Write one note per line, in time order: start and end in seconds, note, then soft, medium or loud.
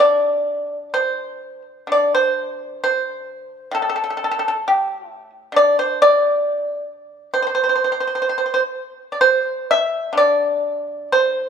0.00 1.86 D3 medium
0.00 0.89 D5 medium
0.94 1.62 C5 medium
1.87 4.62 D3 soft
1.92 2.13 D5 medium
2.15 2.80 C5 medium
2.84 3.69 C5 medium
3.71 5.54 A2 medium
3.71 3.81 A4 medium
3.82 3.88 A4 soft
3.90 3.95 A4 medium
3.96 4.02 A4 soft
4.04 4.09 A4 soft
4.10 4.16 A4 soft
4.17 4.23 A4 medium
4.24 4.30 A4 soft
4.31 4.38 A4 medium
4.39 4.45 A4 medium
4.48 4.53 A4 medium
4.68 5.10 G4 medium
5.10 5.30 E4 medium
5.52 8.25 D3 medium
5.56 5.77 D5 medium
5.79 5.99 C5 medium
6.02 7.30 D5 loud
7.34 7.40 C5 medium
7.42 7.46 C5 medium
7.47 7.54 C5 medium
7.55 7.62 C5 soft
7.64 7.68 C5 soft
7.69 7.74 C5 soft
7.75 7.83 C5 soft
7.84 7.91 C5 soft
7.92 7.99 C5 medium
8.00 8.06 C5 soft
8.07 8.14 C5 soft
8.15 8.21 C5 soft
8.22 8.28 C5 soft
8.29 8.36 C5 soft
8.38 8.45 C5 soft
8.46 8.52 C5 soft
8.54 8.60 C5 medium
9.12 9.20 D5 soft
9.21 9.65 C5 medium
9.71 10.14 E5 loud
10.13 11.49 D3 medium
10.17 11.08 D5 medium
11.12 11.49 C5 medium